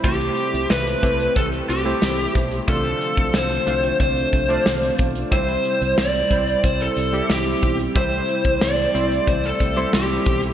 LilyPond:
<<
  \new Staff \with { instrumentName = "Lead electric guitar" } { \time 4/4 \key a \minor \tempo 4 = 91 g'4 b'4 a'8 g'4 r8 | a'4 c''4 c''4. r8 | c''4 d''4 c''16 a'8. g'8. r16 | c''4 d''4 c''16 a'8. g'8. r16 | }
  \new Staff \with { instrumentName = "Synth keys" } { \time 4/4 \key a \minor << { <a e' g' c''>4~ <a e' g' c''>16 r16 <a c' e' g'>4 r16 <a e' g' c''>4 r16 | <a d' f' c''>4~ <a d' f' c''>16 r16 <a d' f' c''>4 r16 <a d' f' d''>4 r16 | <g c' e' c''>4~ <g c' e' c''>16 r16 <g c' e' c''>4 r16 <g c' e' g'>4 r16 | <g c' e' c''>4~ <g c' e' c''>16 r16 <g c' e' c''>4 r16 <g c' e' c''>4 r16 | } \\ { c4. r2 r8 | c4. r2 r8 | c4. r2 r8 | c4. r2 r8 | } >> }
  \new Staff \with { instrumentName = "Analog synth pad" } { \time 4/4 \key a \minor << { <a c'>1 | <d c'>1 | <c' e'>1~ | <c' e'>1 | } \\ { g1 | f1 | g1 | a1 | } >> }
  \new Staff \with { instrumentName = "Fingered electric bass" } { \clef bass \time 4/4 \key a \minor c,8 r16 c,16 c,8 c,8 c,8 c,8 c,8 b,,8 | c,8 r16 c,16 c,8 c,8 c,8 c,8 c,8 b,,8 | c,8 r16 c,16 c,8 c,8 c,8 c,8 c,8 b,,8 | c,8 r16 c,16 c,8 c,8 c,8 c,8 c,8 b,,8 | }
  \new DrumStaff \with { instrumentName = "Drums" } \drummode { \time 4/4 <hh bd>16 hh16 hh16 hh16 sn16 hh16 <hh bd>16 hh16 <hh bd>16 hh16 hh16 hh16 sn16 hh16 <hh bd>16 hh16 | <hh bd>16 hh16 hh16 <hh bd>16 sn16 hh16 hh16 hh16 <hh bd>16 hh16 <hh bd>16 hh16 sn16 hh16 <hh bd>16 hh16 | <hh bd>16 hh16 hh16 hh16 sn16 hh16 <hh bd>16 hh16 <hh bd>16 hh16 hh16 hh16 sn16 hh16 <hh bd>16 hh16 | <hh bd>16 hh16 hh16 <hh bd>16 sn16 hh16 hh16 hh16 <hh bd>16 hh16 <hh bd>16 hh16 sn16 hh16 <hh bd>16 hh16 | }
>>